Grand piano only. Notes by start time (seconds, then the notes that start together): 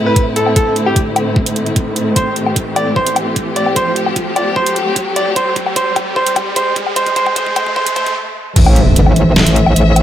0.06 B4
0.36 A4
0.56 A4
0.86 G4
2.16 C5
2.76 D5
2.96 C5
3.56 D5
3.76 C5
4.36 D5
4.56 C5
5.16 D5
5.36 C5
5.76 C5
6.16 C5
6.56 C5
6.96 C5
7.16 C5
7.36 C5
7.56 C5
7.76 C5
7.96 C5